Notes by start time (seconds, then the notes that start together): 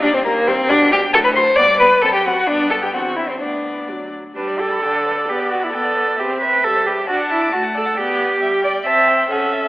Already playing: D#2
0.02 G3 D4 D5
0.14 C4 C5
0.25 D#2 G3 A#3 A#4
0.47 G3 C4 C5
0.69 B2 G3 D4 D5
0.92 G3 G4 G5
1.13 A2 F#3 A4 A5
1.24 B4 B5
1.34 F#3 C5 C6
1.56 G2 B3 D5 D6
1.79 B3 B4 B5
2.02 F#2 C4 A4 A5
2.14 G4 G5
2.25 C4 F#4 F#5
2.48 G2 B3 D4 D5
2.71 A4 A5
2.83 G4 G5
2.93 E2 C4 F#4 F#5
3.16 E4 E5
3.29 C4 C5
3.40 D2 B3 D4 D5
3.89 F#3
4.36 G3 D4 B4 D5
4.48 D5
4.59 A4 G5
4.71 B5
4.83 D3 G5
4.96 D5
5.07 B4
5.18 D5
5.28 B3 G4 B4
5.40 D5
5.51 F#4 G5
5.62 E4 B5
5.73 B3 A4 G5
5.84 D5
5.97 B4
6.08 D5
6.19 C4 G4 B4 E5
6.31 C5
6.41 B4 E5
6.53 G5
6.64 G3 A4 E5
6.76 C5
6.86 G4 B4
6.98 C5
7.07 D4 F#4 D5 A5
7.20 F#5
7.30 E4 A5
7.41 D6
7.53 A3 F#4 A5
7.64 F#5
7.75 A4 D5
7.86 F#5
7.97 B3 G4 D5 G5
8.41 G3 E5 G5
8.64 D5
8.86 C4 C5 E5 A5
9.08 G5
9.30 C#4 A4 E5 F#5
9.53 E5